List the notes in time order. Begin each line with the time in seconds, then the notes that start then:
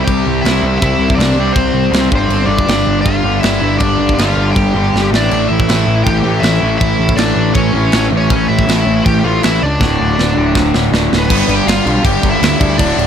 Already playing: C3 G3 C4
0.05 C2 G4 G5, kick, crash
0.27 C2
0.41 C2 C3 E4 E5, crash
0.46 G3 C4, snare
0.62 C2
0.78 C3 G3 E4 E5, kick
0.83 C2 C4, crash
0.99 C2
1.10 kick
1.15 C2 D4 D5
1.20 snare, crash
1.35 C2 G3 C4
1.40 C3
1.53 C2 C4 C5, kick, crash
1.74 C2
1.91 C2 C3 G3 C4, snare, crash
2.11 G1 G2 D3 G3, kick
2.15 C4 C5
2.29 G1, crash
2.46 G1 D5
2.50 D4
2.59 kick
2.67 G1 G2 D3 G3, snare, crash
2.87 G1
3.01 F5
3.05 G1 F4, kick, crash
3.23 G1 G2 D3 G3
3.40 G1 E5, crash
3.44 E4, snare
3.61 G1 G2 D3 G3
3.79 G1 D5, kick, crash
3.83 D4
3.99 G1
4.09 kick
4.15 G1 G2 F5, crash
4.19 D3 G3 F4, snare
4.36 G1
4.52 G5
4.56 G1 G4, kick, crash
4.75 G1 G2 D3 G3
4.94 G1, snare
5.11 A1 A2 E3 A3, snare
5.15 D5
5.21 D4
5.31 A1, crash
5.48 A1 E5
5.53 E4
5.60 kick
5.69 A1 A2 E3 A3, snare, crash
5.87 A1
6.04 A1 G5, kick, crash
6.08 G4
6.23 A1 A2 E3 A3
6.40 A1 E5, crash
6.44 E4, snare
6.61 A1 A2 E3 A3
6.78 A1 E5, kick, crash
6.83 E4
6.99 A1
7.09 kick
7.15 A1 A2 E3 A3 D5, snare, crash
7.21 D4
7.36 A1
7.54 A1 C#4 C#5, kick, crash
7.73 A1 A2 E3 A3
7.92 A1, snare, crash
8.11 A1 A2 E3 A3
8.17 C#4 C#5
8.30 A1, kick, crash
8.48 A1 E4 E5
8.59 kick
8.68 A1 A2 E3 A3, snare, crash
8.85 A1
9.05 A1 G4 G5, kick, crash
9.24 A1 A2 E3 A3 F4 F5
9.43 A1 E4 E5, snare, crash
9.62 C#2 D4 D5
9.80 D1 D2 A2 D3, kick, snare
10.00 D1
10.19 D1, snare
10.34 D1 D2 A2 D3
10.55 D1, kick, snare
10.74 D1, snare
10.91 D1 D2 A2 D3, snare
11.13 D1, snare
11.18 B3 B4
11.29 G1 G2 D3 G3, kick, crash
11.48 G1 G2 D3 G3, crash
11.55 G4 G5
11.67 G1 G2 D3 G3 F4 F5, snare, crash
11.85 B1 G2 D3 G3, crash
12.04 G1 G2 D3 G3 G4 G5, kick, crash
12.21 G1 G2 D3 G3, kick, crash
12.30 E4 E5
12.40 D2 G2 D3 G3, snare, crash
12.59 D2 G2 D3 G3, kick, crash
12.78 D1 D2 A2 D3 D4 D5, kick, crash
12.97 D1 D2 A2 D3, crash